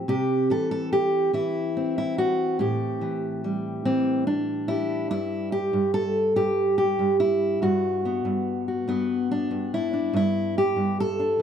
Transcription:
steel-string acoustic guitar
Already playing: C4
0.08 C3 G4
0.50 E3 A4
0.71 A4
0.93 G4
1.33 E3 E4
1.77 C4
1.98 E4
2.18 F#4
2.59 A2 G4
3.01 E3
3.44 G3
3.85 E3 C4
4.27 D4
4.68 E4 G4
5.11 G2 E4
5.52 G4
5.73 G2
5.94 A4
6.36 G2 G4
6.78 G4
6.99 G2
7.20 E4
7.62 G2 F#4
8.05 B3
8.25 G2
8.68 F#4
8.88 G2 B3
9.31 D4
9.51 G2
9.74 E4
9.93 D4
10.13 G2 E4
10.58 G4
10.76 G2
11.00 A4
11.20 D4

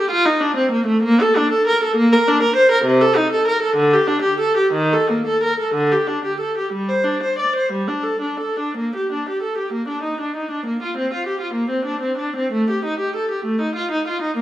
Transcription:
viola
0.00 G4
0.11 F4
0.26 D#4
0.41 D4
0.57 C4
0.72 A#3
0.87 A3
1.03 A#3
1.21 A4
1.37 D4
1.52 A4
1.67 A#4
1.84 A4
1.96 A#3
2.13 A#4
2.28 D4
2.43 A#4
2.56 C5
2.72 A#4
2.85 C3
3.01 A4
3.16 D#4
3.33 A4
3.48 A#4
3.63 A4
3.76 D3
3.94 G4
4.08 D4
4.22 G4
4.40 A4
4.57 G4
4.73 D#3
4.93 A4
5.10 A#3
5.27 A4
5.43 A#4
5.60 A4
5.74 D3
5.92 G4
6.07 D4
6.25 G4
6.40 A4
6.58 G4
6.73 G3
6.89 C5
7.04 D4
7.23 C5
7.39 D5
7.56 C5
7.72 G3
7.88 D4
8.04 A4
8.22 D4
8.40 A4
8.60 D4
8.77 A#3
8.96 G4
9.12 D4
9.29 G4
9.43 A4
9.58 G4
9.73 A#3
9.88 D4
10.03 D#4
10.21 D4
10.36 D#4
10.51 D4
10.66 A#3
10.83 F4
10.97 C4
11.13 F4
11.27 G4
11.41 F4
11.54 A#3
11.70 C4
11.85 D4
12.01 C4
12.18 D4
12.36 C4
12.52 A3
12.70 G4
12.85 D#4
12.99 G4
13.16 A4
13.31 G4
13.45 A3
13.61 D#4
13.76 F4
13.91 D#4
14.08 F4
14.22 D#4
14.37 A#3

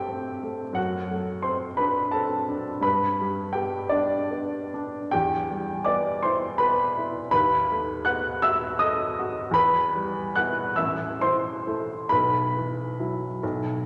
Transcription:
upright piano
Already playing: G2 A3 C4 G4 A4 C5 G5 A5 C6
0.08 C4
0.43 A3
0.73 F#2 F#4 F#5
1.11 A3
1.42 C4 C5 C6
1.77 D4 B4 B5
2.11 C4 A4 A5
2.49 D4
2.81 G2 B4 B5
3.21 G3
3.53 B3 G4 G5
3.89 D4 D5
4.31 B3
4.74 D4
5.11 E2 G4 G5
5.51 G3
5.84 B3 D5 D6
6.23 E4 C5 C6
6.58 B3 B4 B5
6.98 E4
7.31 D#2 B4 B5
7.71 A3
8.05 B3 F#5 F#6
8.42 F#4 E5 E6
8.79 A4 D#5 D#6
9.19 F#4
9.51 E2 B4 B5
9.96 G3
10.36 B3 E4 F#5 F#6
10.76 A1 E5 E6
11.21 E3 C5 C6
11.67 A3 E4
12.09 B1 B4 B5
12.57 E3
12.99 F#3 E4
13.43 B1

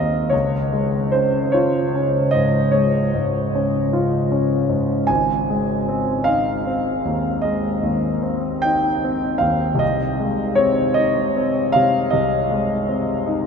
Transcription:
grand piano
Already playing: D#2 C4 D#4 D#5 F5
0.30 C#2 C#5
0.73 G#3
1.12 C#4 C5
1.52 F4 C#5
1.95 C#4
2.31 G#2 D#5
2.72 G#3 C#5
3.14 G#2
3.55 C#4
3.93 F4
4.32 C#4
4.69 G#2
5.07 G#1 G#5
5.50 G#3
5.88 C4
6.24 D#4 F5
6.67 C4
7.05 D#2
7.42 G#3 D#5
7.83 D#2
8.23 C4
8.62 D#4 G5
9.04 C4
9.38 D#2 F5
9.75 C2
9.79 D#5
10.19 G#3
10.55 C4 C#5
10.94 D#4 D#5
11.36 C4
11.72 C3 F5
12.10 C2 D#5
12.51 G#3
12.88 C4
13.26 D#4

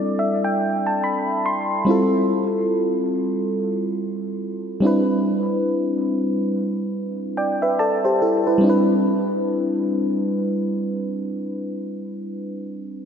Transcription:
fm electric piano
Already playing: G3 C4 D4 E4 A4 D5
0.19 E5
0.44 G5
0.87 A5
1.04 B5
1.46 C6
1.85 G3 C4 E4
1.89 F4 A4
4.80 G3 C4 D4
4.85 E4 B4
7.37 D5 G5
7.62 B4 E5
7.79 A4 D5 A5
8.05 G4 C5
8.22 E4 A4
8.47 E4 B4
8.58 G3 C4
8.64 D4 E4
8.69 B4

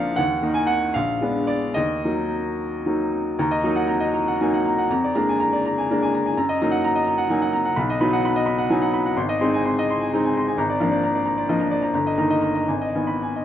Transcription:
upright piano
Already playing: A#1 F3 A#3 D4 F5 F#5
0.16 D#2 F#5
0.42 D#3 A#3 D#4
0.54 G#5
0.67 F#5
0.94 A#1 F5
1.21 G#3 B3 D4
1.47 D5
1.74 D#2 D#5
2.05 F#3 A#3 D#4
2.86 F#3 A#3 D#4
3.39 D#2 A#5
3.51 D#5
3.64 F#3 A#3 D#4 A#5
3.76 F#5
3.88 A#5
4.00 D#5
4.14 A#5
4.28 F#5
4.41 F#3 A#3 D#4 G#5
4.54 F#5
4.66 A#5
4.78 F#5
4.90 F2 A#5
5.04 D5
5.15 G#3 A#3 D4 A#5
5.29 G#5
5.40 A#5
5.53 D5
5.65 A#5
5.78 G#5
5.91 G#3 A#3 D4 A#5
6.02 G#5
6.14 A#5
6.26 G#5
6.37 F#2 A#5
6.49 D#5
6.62 F#3 A#3 D#4 A#5
6.71 F#5
6.84 A#5
6.95 D#5
7.07 A#5
7.18 F#5
7.30 F#3 A#3 D#4 G#5
7.42 F#5
7.53 A#5
7.65 F#5
7.76 B1 B5
7.90 D#5
8.01 F#3 B3 D#4 B5
8.13 F#5
8.25 B5
8.36 D#5
8.46 B5
8.58 F#5
8.70 F#3 B3 D#4 G#5
8.82 F#5
8.94 B5
9.06 F#5
9.17 G#1 C6
9.29 D#5
9.41 G#3 C4 D#4 C6
9.54 G#5
9.66 C6
9.79 D#5
9.90 C6
10.01 G#5
10.13 G#3 C4 D#4 A#5
10.25 G#5
10.37 C6
10.47 G#5
10.58 G#1 A#5
10.69 D5
10.80 F3 A#3 D4 A#5
10.92 D5
11.04 A#5
11.15 D5
11.26 A#5
11.37 D5
11.49 F3 A#3 D4 D#5
11.60 A#5
11.71 D5
11.82 A#5
11.94 G1 A#5
12.07 D#5
12.18 D#3 A#3 D#4 A#5
12.30 D#5
12.41 A#5
12.55 D#5
12.68 G#1 G#5
12.81 D#5
12.95 D#3 B3 G#5
13.07 B5
13.22 G#5
13.36 D#5

